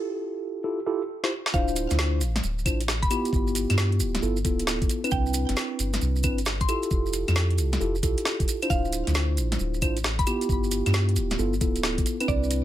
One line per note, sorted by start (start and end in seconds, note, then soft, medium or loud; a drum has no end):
0.00 0.62 E4 medium
0.00 0.62 F4 medium
0.00 0.62 G4 medium
0.00 0.62 A4 loud
0.64 0.79 E4 medium
0.64 0.79 F4 medium
0.64 0.79 G4 medium
0.64 0.79 A4 medium
0.87 1.01 E4 loud
0.87 1.01 F4 medium
0.87 1.01 G4 loud
0.87 1.01 A4 loud
1.24 1.31 E4 medium
1.24 1.31 F4 medium
1.24 1.31 G4 medium
1.24 1.31 C5 loud
1.24 snare medium
1.46 snare loud
1.54 1.87 D1 medium
1.54 2.21 D4 loud
1.54 2.21 E4 medium
1.54 2.21 F4 medium
1.54 2.21 C5 loud
1.54 1.74 F5 loud
1.54 kick loud
1.54 maracas soft
1.68 maracas soft
1.76 closed hi-hat loud
1.76 maracas medium
1.90 2.22 D2 medium
1.90 snare soft
1.90 closed hi-hat medium
1.90 maracas soft
1.99 snare loud
1.99 closed hi-hat soft
1.99 maracas soft
2.21 2.41 A1 medium
2.21 closed hi-hat medium
2.21 maracas medium
2.36 snare medium
2.36 closed hi-hat medium
2.36 maracas soft
2.43 2.67 D1 medium
2.43 maracas medium
2.59 maracas soft
2.66 3.04 A1 medium
2.66 2.80 D4 medium
2.66 2.80 E4 medium
2.66 2.80 F4 medium
2.66 2.80 C5 medium
2.66 kick loud
2.66 closed hi-hat loud
2.66 claves medium
2.66 maracas loud
2.80 closed hi-hat medium
2.80 maracas soft
2.88 snare loud
2.88 maracas medium
3.02 3.09 D1 medium
3.02 3.20 B5 loud
3.02 kick loud
3.02 closed hi-hat medium
3.02 maracas soft
3.10 4.21 B3 medium
3.10 4.21 E4 medium
3.10 4.21 F4 medium
3.10 4.21 G4 loud
3.10 closed hi-hat medium
3.10 claves medium
3.10 maracas medium
3.25 closed hi-hat medium
3.25 maracas soft
3.33 3.66 G1 loud
3.33 kick loud
3.33 maracas medium
3.47 maracas soft
3.55 closed hi-hat loud
3.55 maracas loud
3.70 4.01 G2 medium
3.70 snare soft
3.70 closed hi-hat medium
3.70 claves medium
3.70 maracas soft
3.78 snare loud
3.78 closed hi-hat soft
3.78 maracas medium
3.92 closed hi-hat soft
4.00 4.20 D1 medium
4.00 closed hi-hat loud
4.00 maracas medium
4.15 snare medium
4.15 closed hi-hat medium
4.15 maracas soft
4.22 4.46 G1 medium
4.22 4.37 B3 medium
4.22 4.37 E4 medium
4.22 4.37 F4 medium
4.22 4.37 A4 medium
4.22 maracas medium
4.37 maracas soft
4.45 4.83 D1 medium
4.45 5.01 B3 medium
4.45 5.01 E4 medium
4.45 5.01 F4 medium
4.45 5.01 A4 medium
4.45 kick loud
4.45 closed hi-hat loud
4.45 maracas loud
4.59 closed hi-hat medium
4.59 maracas soft
4.67 snare loud
4.67 maracas medium
4.82 4.88 G1 medium
4.82 kick loud
4.82 closed hi-hat medium
4.82 maracas soft
4.89 closed hi-hat medium
4.89 maracas loud
5.04 6.22 C4 medium
5.04 6.22 D4 medium
5.04 6.22 E4 medium
5.04 6.22 B4 medium
5.04 closed hi-hat medium
5.04 claves medium
5.04 maracas soft
5.11 5.45 C2 loud
5.11 5.32 G5 loud
5.11 kick loud
5.11 maracas medium
5.26 maracas soft
5.34 closed hi-hat loud
5.34 maracas loud
5.49 5.56 G1 medium
5.49 snare soft
5.49 closed hi-hat medium
5.49 maracas soft
5.57 snare loud
5.57 closed hi-hat soft
5.57 maracas medium
5.79 5.99 G1 medium
5.79 closed hi-hat medium
5.79 maracas medium
5.93 snare medium
5.93 closed hi-hat medium
5.93 maracas soft
6.01 6.25 C2 loud
6.01 maracas medium
6.16 maracas soft
6.23 6.62 G1 medium
6.23 6.39 C4 medium
6.23 6.39 D4 medium
6.23 6.39 E4 medium
6.23 6.39 B4 medium
6.23 kick loud
6.23 closed hi-hat loud
6.23 claves medium
6.23 maracas loud
6.38 closed hi-hat medium
6.38 maracas soft
6.46 snare loud
6.46 maracas medium
6.60 6.67 C2 medium
6.60 6.79 C6 medium
6.60 kick loud
6.60 closed hi-hat medium
6.60 maracas soft
6.69 7.79 E4 medium
6.69 7.79 F4 medium
6.69 7.79 G4 medium
6.69 7.79 A4 loud
6.69 closed hi-hat medium
6.69 claves medium
6.69 maracas loud
6.83 closed hi-hat medium
6.83 maracas soft
6.91 7.24 F1 loud
6.91 kick loud
6.91 maracas medium
7.06 maracas soft
7.13 closed hi-hat loud
7.13 maracas loud
7.28 7.60 F2 medium
7.28 snare soft
7.28 closed hi-hat medium
7.28 claves medium
7.28 maracas soft
7.36 snare loud
7.36 closed hi-hat soft
7.36 maracas medium
7.51 closed hi-hat soft
7.58 7.78 C2 medium
7.58 closed hi-hat medium
7.58 maracas medium
7.73 snare medium
7.73 closed hi-hat medium
7.73 maracas soft
7.81 8.04 F1 loud
7.81 7.95 E4 medium
7.81 7.95 F4 medium
7.81 7.95 G4 medium
7.81 7.95 A4 medium
7.81 maracas medium
7.95 maracas soft
8.03 8.15 C2 medium
8.03 8.59 E4 medium
8.03 8.59 F4 medium
8.03 8.59 G4 medium
8.03 8.59 A4 medium
8.03 kick loud
8.03 closed hi-hat loud
8.03 maracas loud
8.18 closed hi-hat medium
8.18 maracas soft
8.25 snare loud
8.25 maracas medium
8.40 8.46 F1 loud
8.40 kick loud
8.40 closed hi-hat medium
8.40 maracas soft
8.48 closed hi-hat medium
8.48 maracas loud
8.62 9.80 D4 medium
8.62 9.80 E4 medium
8.62 9.80 F4 medium
8.62 9.80 C5 medium
8.62 closed hi-hat medium
8.62 claves medium
8.62 maracas soft
8.70 9.03 D1 loud
8.70 8.90 F5 loud
8.70 kick loud
8.70 maracas medium
8.85 maracas soft
8.93 closed hi-hat loud
8.93 maracas medium
9.07 9.39 D2 medium
9.07 snare soft
9.07 closed hi-hat medium
9.07 maracas soft
9.14 snare loud
9.14 closed hi-hat soft
9.14 maracas medium
9.37 9.57 A1 medium
9.37 closed hi-hat medium
9.37 maracas medium
9.52 snare medium
9.52 closed hi-hat medium
9.52 maracas soft
9.59 9.83 D1 loud
9.59 maracas soft
9.74 maracas soft
9.82 10.20 A1 medium
9.82 9.97 D4 medium
9.82 9.97 E4 medium
9.82 9.97 F4 medium
9.82 9.97 C5 medium
9.82 kick loud
9.82 closed hi-hat loud
9.82 claves medium
9.82 maracas loud
9.97 closed hi-hat medium
9.97 maracas soft
10.04 snare loud
10.04 maracas medium
10.19 10.26 D1 medium
10.19 10.37 B5 medium
10.19 kick loud
10.19 closed hi-hat medium
10.19 maracas soft
10.27 11.37 B3 medium
10.27 11.37 E4 medium
10.27 11.37 F4 medium
10.27 11.37 G4 loud
10.27 closed hi-hat medium
10.27 claves medium
10.27 maracas loud
10.41 closed hi-hat medium
10.41 maracas soft
10.49 10.83 G1 medium
10.49 kick loud
10.49 maracas medium
10.64 maracas soft
10.71 closed hi-hat loud
10.71 maracas medium
10.86 11.18 G2 medium
10.86 snare soft
10.86 closed hi-hat medium
10.86 claves medium
10.86 maracas soft
10.94 snare loud
10.94 closed hi-hat soft
10.94 maracas medium
11.09 closed hi-hat soft
11.16 11.36 D1 medium
11.16 closed hi-hat medium
11.16 maracas medium
11.31 snare medium
11.31 closed hi-hat medium
11.31 maracas soft
11.39 11.63 G1 loud
11.39 11.53 B3 medium
11.39 11.53 E4 medium
11.39 11.53 F4 medium
11.39 11.53 A4 medium
11.39 maracas soft
11.53 maracas soft
11.61 11.99 D1 medium
11.61 12.17 B3 medium
11.61 12.17 E4 medium
11.61 12.17 F4 medium
11.61 12.17 A4 medium
11.61 kick loud
11.61 closed hi-hat loud
11.61 maracas medium
11.76 closed hi-hat medium
11.76 maracas soft
11.83 snare loud
11.83 maracas soft
11.98 12.05 G1 medium
11.98 kick loud
11.98 closed hi-hat medium
11.98 maracas soft
12.06 closed hi-hat medium
12.06 maracas loud
12.20 12.64 C4 medium
12.20 12.64 D4 medium
12.20 12.64 E4 medium
12.20 12.64 B4 medium
12.20 closed hi-hat medium
12.20 claves medium
12.20 maracas soft
12.28 12.62 C2 loud
12.28 12.48 D5 loud
12.28 kick loud
12.28 maracas soft
12.43 maracas soft
12.51 closed hi-hat loud
12.51 maracas medium